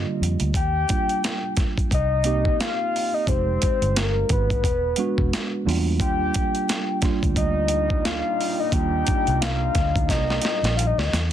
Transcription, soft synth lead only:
0.00 0.20 D#5 medium
0.56 1.54 G5 loud
1.94 2.57 D#5 loud
2.60 3.16 F5 loud
3.14 3.30 D#5 medium
3.29 3.99 C5 loud
3.97 4.30 A#4 medium
4.32 5.63 B4 medium
6.01 6.99 G5 loud
7.37 8.07 D#5 loud
8.05 8.61 F5 loud
8.60 8.75 D#5 medium
8.74 9.43 G5 loud
9.41 10.09 F5 loud
10.10 10.79 D#5 medium
10.77 10.88 F5 medium
10.87 11.00 D#5 medium
10.98 11.08 D5 medium
11.06 11.13 D#5 medium

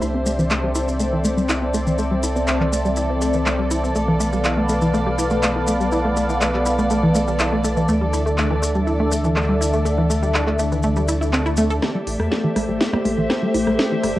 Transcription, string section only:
0.00 12.91 E3 medium
0.00 1.59 D4 medium
0.00 1.08 G4 medium
0.00 0.86 C5 medium
0.44 12.76 A4 medium
0.83 13.15 D5 medium
11.82 14.19 G4 medium
11.97 14.19 E5 medium
12.24 14.19 C5 medium

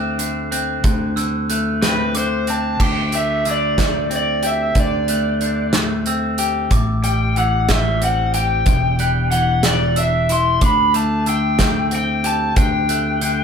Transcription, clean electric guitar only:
0.00 0.18 D3 medium
0.00 1.17 A3 medium
0.00 0.50 C4 medium
0.19 0.83 D3 medium
0.52 1.81 C4 medium
0.84 1.16 D3 medium
1.17 2.14 D3 medium
1.50 2.81 A3 medium
1.82 2.47 C4 medium
2.15 2.79 D3 medium
2.48 2.80 C4 medium
2.80 3.45 D3 medium
3.13 3.78 A3 medium
3.46 4.74 D3 medium
3.79 5.08 A3 soft
4.10 6.06 C4 medium
4.43 6.38 G4 medium
4.75 5.40 D3 medium
5.09 5.73 A3 soft
5.42 6.72 D3 medium
5.74 6.72 A3 soft
6.07 6.72 C4 medium
6.39 6.74 G4 medium
6.71 8.34 A2 medium
7.04 7.69 G3 medium
7.37 8.67 E3 medium
7.69 8.99 G3 medium
8.02 8.67 C4 soft
8.34 10.29 G4 medium
8.67 10.30 E2 medium
8.99 9.64 G3 medium
9.32 10.61 E3 medium
9.65 10.94 G3 soft
9.97 11.92 D4 soft
10.30 10.62 E4 medium
10.62 11.26 D3 medium
10.94 11.59 A3 medium
11.27 12.56 D3 medium
11.59 12.89 A3 soft
11.92 13.44 C4 medium
12.24 13.44 G4 medium
12.57 13.21 D3 medium
12.90 13.44 A3 medium
13.22 13.44 D3 medium

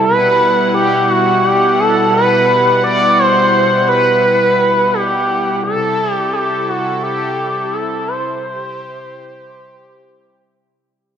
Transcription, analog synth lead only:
0.05 0.71 B4 loud
0.74 1.10 G4 loud
1.09 1.46 F#4 loud
1.44 1.81 G4 loud
1.79 2.13 A4 loud
2.14 2.80 B4 loud
2.84 3.20 D5 loud
3.19 3.88 C5 loud
3.89 4.95 B4 loud
4.94 5.63 G4 loud
5.63 6.12 A4 loud
6.12 6.33 G4 loud
6.33 6.70 G4 loud
6.68 7.03 F#4 loud
7.03 7.74 G4 loud
7.73 8.09 A4 loud
8.08 10.86 C5 loud

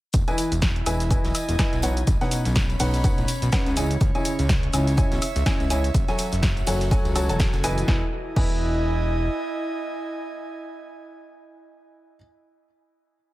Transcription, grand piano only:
0.28 0.51 E3 medium
0.28 0.51 E4 medium
0.28 0.51 B4 medium
0.28 0.51 D#5 medium
0.28 0.51 G#5 medium
0.86 1.08 E3 medium
0.86 1.08 E4 medium
0.86 1.08 B4 medium
0.86 1.08 D#5 medium
0.86 1.08 G#5 medium
1.11 1.34 E3 medium
1.11 1.34 E4 medium
1.11 1.34 B4 medium
1.11 1.34 D#5 medium
1.11 1.34 G#5 medium
1.59 1.75 E4 medium
1.59 1.75 B4 medium
1.59 1.75 D#5 medium
1.59 1.75 G#5 loud
1.83 1.99 B2 medium
1.83 1.99 D#4 medium
1.83 1.99 B4 medium
1.83 1.99 C#5 medium
1.83 1.99 F#5 medium
2.21 2.44 B2 medium
2.21 2.44 D#4 medium
2.21 2.44 B4 medium
2.21 2.44 C#5 medium
2.21 2.44 F#5 medium
2.80 3.02 B2 medium
2.80 3.02 D#4 medium
2.80 3.02 B4 medium
2.80 3.02 C#5 medium
2.80 3.02 F#5 medium
3.04 3.27 B2 medium
3.04 3.27 D#4 medium
3.04 3.27 B4 medium
3.04 3.27 C#5 medium
3.04 3.27 F#5 medium
3.53 3.68 C#3 medium
3.53 3.68 D#4 medium
3.53 3.68 B4 medium
3.53 3.68 C#5 medium
3.53 3.68 F#5 loud
3.77 3.93 C#3 medium
3.77 3.93 E4 medium
3.77 3.93 C#5 medium
3.77 3.93 D#5 medium
3.77 3.93 G#5 medium
4.15 4.38 C#3 medium
4.15 4.38 E4 medium
4.15 4.38 C#5 medium
4.15 4.38 D#5 medium
4.15 4.38 G#5 medium
4.73 4.95 C#3 medium
4.73 4.95 E4 medium
4.73 4.95 C#5 medium
4.73 4.95 D#5 medium
4.73 4.95 G#5 medium
4.98 5.21 C#3 medium
4.98 5.21 E4 medium
4.98 5.21 C#5 medium
4.98 5.21 D#5 medium
4.98 5.21 G#5 loud
5.46 5.62 C#3 loud
5.46 5.62 E4 medium
5.46 5.62 C#5 medium
5.46 5.62 D#5 medium
5.46 5.62 G#5 loud
5.70 5.86 E4 medium
5.70 5.86 C#5 medium
5.70 5.86 D#5 medium
5.70 5.86 G#5 medium
6.08 6.31 F#3 medium
6.08 6.31 F#4 medium
6.08 6.31 A4 medium
6.08 6.31 C#5 medium
6.08 6.31 G#5 medium
6.67 6.89 F#3 medium
6.67 6.89 F#4 medium
6.67 6.89 A4 medium
6.67 6.89 C#5 medium
6.67 6.89 G#5 medium
6.91 7.13 F#3 medium
6.91 7.13 F#4 medium
6.91 7.13 A4 medium
6.91 7.13 C#5 medium
6.91 7.13 G#5 medium
7.15 7.27 F#3 medium
7.15 7.27 F#4 medium
7.15 7.27 A4 medium
7.15 7.27 C#5 medium
7.15 7.27 A5 loud
7.29 7.52 F#3 medium
7.29 7.52 F#4 medium
7.29 7.52 A4 medium
7.29 7.52 C#5 medium
7.29 7.52 A5 medium
7.64 7.99 E3 loud
7.64 7.87 E4 medium
7.64 7.87 B4 medium
7.64 7.87 D#5 medium
7.64 7.87 G#5 loud
7.88 8.03 E4 medium
7.88 8.03 B4 medium
7.88 8.03 D#5 medium
7.88 8.03 G#5 loud
8.36 12.16 E4 medium
8.36 12.16 B4 medium
8.36 12.16 D#5 medium
8.36 12.16 G#5 medium

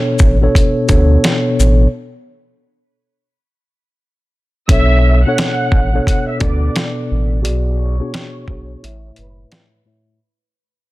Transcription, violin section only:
4.69 5.22 E5 loud
4.69 5.22 E6 medium
5.24 6.03 F#5 medium
5.24 6.03 F#6 medium
6.07 6.26 F#5 medium
6.07 6.27 F#6 medium
6.28 6.40 E5 medium
6.28 6.40 E6 medium
6.42 6.73 D5 medium
6.42 6.73 D6 medium
7.79 9.13 C#5 medium
7.79 9.13 C#6 medium
9.18 9.49 B4 medium
9.18 9.49 B5 medium

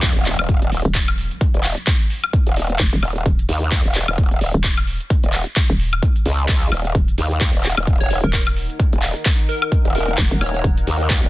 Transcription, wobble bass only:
0.00 0.14 D#2 loud
0.16 0.37 D#1 loud
0.39 0.70 D#1 loud
0.72 0.83 D#1 loud
1.54 1.75 D#1 loud
2.47 2.78 D#1 loud
3.03 3.24 D#1 loud
3.49 3.83 D#2 loud
3.85 4.06 D#1 loud
4.08 4.40 D#1 loud
4.41 4.52 D#1 loud
5.24 5.45 D#1 loud
6.26 6.70 C#2 loud
6.72 6.93 D#1 loud
7.18 7.52 D#2 loud
7.54 7.75 D#1 loud
7.78 8.09 D#1 medium
8.10 8.22 D#1 loud
8.93 9.14 D#1 loud
9.85 10.16 D#1 loud
10.41 10.63 D#1 loud
10.87 11.21 D#2 loud
11.24 11.29 D#1 loud

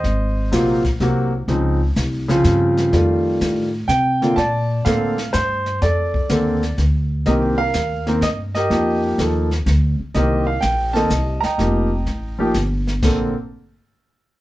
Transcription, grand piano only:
0.00 0.82 C5 medium
0.00 0.81 D#5 medium
0.52 0.81 C3 medium
0.52 0.81 F#3 medium
0.52 0.82 A#3 medium
0.52 0.82 F4 medium
1.01 1.30 C3 medium
1.01 1.30 F#3 medium
1.01 1.30 A#3 medium
1.01 1.31 F#4 medium
1.48 1.78 C#3 medium
1.48 1.78 F3 soft
1.48 1.78 C4 soft
1.48 1.79 D#4 medium
2.28 2.89 C#3 medium
2.28 2.90 F3 medium
2.28 2.90 C4 medium
2.28 2.90 F4 medium
2.92 3.67 D#3 medium
2.92 3.67 G3 soft
2.92 3.67 A3 medium
2.92 3.68 F4 medium
3.88 4.38 G5 medium
4.22 4.36 D3 medium
4.22 4.36 A#3 medium
4.22 4.36 C4 medium
4.22 4.36 F4 medium
4.36 5.14 D5 medium
4.36 4.81 A5 medium
4.85 5.15 D3 medium
4.85 5.15 A#3 medium
4.85 5.15 C4 medium
4.85 5.15 A4 medium
4.85 5.35 F5 medium
5.33 5.78 C5 medium
5.82 6.30 A4 medium
5.82 6.74 D5 medium
6.30 6.59 D3 medium
6.30 6.59 A#3 soft
6.30 6.60 C4 soft
6.30 6.60 A4 medium
7.26 7.55 D#3 medium
7.26 7.56 A#3 medium
7.26 7.56 C4 medium
7.26 7.56 G4 medium
7.26 7.59 A#4 medium
7.26 7.34 D#5 medium
7.58 8.07 A#4 medium
7.58 8.03 F5 loud
8.07 8.21 D#3 medium
8.07 8.21 A#3 medium
8.07 8.21 C4 medium
8.07 8.21 A#4 medium
8.23 8.28 D#5 medium
8.55 8.70 G4 medium
8.55 9.15 A#4 medium
8.55 8.99 D#5 medium
8.70 9.17 F3 medium
8.70 9.17 A#3 soft
8.70 9.17 D#4 soft
8.70 9.17 G4 medium
9.19 9.48 F3 soft
9.19 9.48 A#3 soft
9.19 9.48 D#4 soft
9.19 9.48 A4 medium
10.15 10.44 D#3 medium
10.15 10.44 A#3 soft
10.15 10.44 C4 soft
10.15 10.45 G4 medium
10.15 10.92 A#4 medium
10.15 10.45 D#5 medium
10.47 10.61 F5 medium
10.61 10.92 G5 medium
10.93 11.08 D#3 medium
10.93 11.09 A#3 medium
10.93 11.09 C4 medium
10.93 11.09 A4 medium
10.93 11.43 D#5 medium
10.93 11.44 A5 medium
11.41 12.51 D#5 medium
11.41 12.51 G5 medium
11.41 12.49 A#5 medium
11.58 11.87 F3 medium
11.58 11.88 A#3 medium
11.58 11.88 D#4 soft
11.58 11.88 G4 medium
12.39 12.53 F3 medium
12.39 12.53 A#3 medium
12.39 12.53 D#4 medium
12.39 12.54 G4 medium
13.03 13.32 D3 medium
13.03 13.32 A#3 medium
13.03 13.32 C4 medium
13.03 13.33 A4 medium

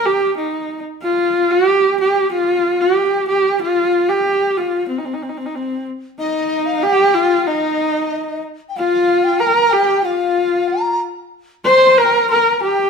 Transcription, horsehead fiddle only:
0.05 0.37 G4 medium
0.37 0.82 D#4 medium
1.02 1.53 F4 medium
1.51 1.99 G4 loud
2.01 2.30 G4 medium
2.33 2.82 F4 medium
2.81 3.28 G4 medium
3.28 3.58 G4 medium
3.62 4.10 F4 medium
4.09 4.58 G4 medium
4.57 4.88 F4 medium
4.88 5.00 C4 medium
4.98 5.07 D#4 medium
5.05 5.15 C4 medium
5.13 5.24 D#4 medium
5.22 5.31 C4 medium
5.29 5.39 D#4 medium
5.37 5.47 C4 medium
5.46 5.56 D#4 medium
5.55 5.87 C4 medium
6.19 6.84 D#4 medium
6.83 7.16 G4 loud
7.14 7.48 F4 medium
7.47 8.44 D#4 medium
8.77 9.42 F4 loud
9.40 9.74 A#4 medium
9.73 10.04 G4 loud
10.04 10.97 F4 medium
11.65 12.00 C5 loud
11.98 12.30 A#4 loud
12.31 12.60 A#4 medium
12.63 12.90 G4 medium

